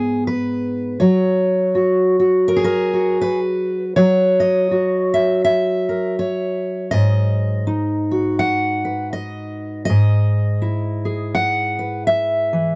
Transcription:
Already playing: G#2 B3 D#4 G#4
0.27 B4
1.00 F#3 C#5
1.75 F#4
2.20 F#4
2.48 A#4
2.56 G#4
2.64 A#4
2.93 F#4
3.21 B4
3.96 F#3 C#5
4.40 D#5
4.71 F#4
5.14 E5
5.45 E5
5.89 A#4
6.19 C#5
6.91 G#2 D#5
7.67 D#4
8.11 F#4
8.39 F#5
8.85 B4
9.13 D#5
9.85 D#5
9.90 G#2
10.62 E4
11.05 G#4
11.35 F#5
11.79 B4
12.07 E5
12.53 E3

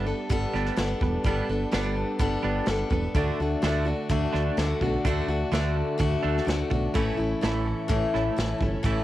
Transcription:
Already playing: G1 D4 G4 A4 B4
0.06 G3 B3 D4 A4
0.30 G1 G3 B3 D4 A4, kick, closed hi-hat
0.54 G1 G3 B3 D4, snare
0.66 snare
0.76 G1 G3 B3 D4 A4, snare, closed hi-hat
1.01 E1 G3 B3, kick
1.24 G1 G3 B3 D4 A4, kick, closed hi-hat
1.49 G1 G3 B3 D4 A4
1.71 G1 G3 B3 D4 A4, snare, closed hi-hat
1.97 G3 B3
2.19 G1 G3 B3 D4 A4, kick, closed hi-hat
2.43 G1 G3 B3 D4
2.66 G1 G3 B3 D4, snare, closed hi-hat
2.71 A4
2.90 E1 G3 B3 D4 A4, kick
3.14 D2 D3 A3 D4 F#4 A4 D5, kick, closed hi-hat
3.40 D2 D3 A3 D4 F#4
3.62 D2 D3 A3 D4 F#4, snare, closed hi-hat
3.85 D3 A3 D4 F#4
4.09 D2 D3 A3 D4 F#4, kick, closed hi-hat
4.33 D2 D3 A3 D4, snare
4.57 D2 D3 A3 D4, snare, closed hi-hat
4.61 F#4
4.81 B1 D3 D4 F#4, kick
4.86 A3
5.05 D2 D3 A3 D4 F#4, kick, closed hi-hat
5.28 D2 D3 A3 D4 F#4
5.52 D2 D3 A3 D4 F#4, snare, closed hi-hat
5.76 D3 A3
5.98 D2 D3 A3 D4 F#4, kick, closed hi-hat
6.23 D2 D3 A3 D4
6.38 snare
6.45 D2 D3 A3 D4, closed hi-hat
6.49 F#4, snare
6.70 B1 D3 A3 D4 F#4, kick
6.94 A1 A2 E3 A3 C#4 E4 A4 C#5, kick, closed hi-hat
7.17 A1 A2 E3 A3 C#4 E4
7.41 A1 A2 E3 A3 C#4 E4, snare, closed hi-hat
7.67 A2 E3
7.88 A1 A2 E3 A3 C#4 E4, kick, closed hi-hat
8.14 A1 A2 E3 A3, snare
8.37 A1 A2 E3 A3 C#4 E4, snare, closed hi-hat
8.58 G1 A2 A3 C#4 E4, kick
8.63 E3
8.83 A1 A2 E3 A3 C#4 E4, kick, closed hi-hat

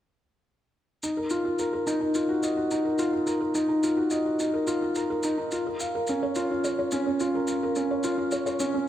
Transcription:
1.03 D#4, shaker
1.17 A#4
1.30 F4, shaker
1.45 F4
1.59 A#4, shaker
1.73 A#4
1.87 D#4, shaker
2.01 D#4
2.15 F4, shaker
2.29 F#4
2.43 D#5, shaker
2.57 F#4
2.71 D#4, shaker
2.85 A#4
2.99 F4, shaker
3.13 F4
3.27 A#4, shaker
3.41 A#4
3.55 D#4, shaker
3.69 D#4
3.83 F4, shaker
3.97 F#4
4.10 D#5, shaker
4.26 F#4
4.40 D#4, shaker
4.54 A#4
4.67 F4, shaker
4.82 F4
4.95 A#4, shaker
5.10 A#4
5.23 D#4, shaker
5.38 D#4
5.51 F4, shaker
5.67 A#4
5.80 F5, shaker
5.95 A#4
6.07 C#4, shaker
6.23 C#5
6.35 F4, shaker
6.51 F4
6.64 C#5, shaker
6.79 C#5
6.92 C#4, shaker
7.07 C#4
7.20 F4, shaker
7.35 A#4
7.48 F5, shaker
7.63 A#4
7.76 C#4, shaker
7.91 C#5
8.04 F4, shaker
8.18 F4
8.32 C#5, shaker
8.46 C#5, shaker
8.60 C#4, shaker
8.74 C#4

